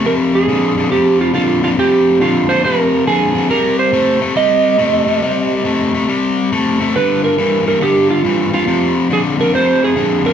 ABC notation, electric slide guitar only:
X:1
M:4/4
L:1/8
Q:"Swing" 1/4=139
K:Cm
V:1 name="Electric slide guitar"
B A3 G F F F | G2 F c B2 A2 | B c2 z e4- | e4 z4 |
=B _B2 B G F2 F- | F z A B c A2 B |]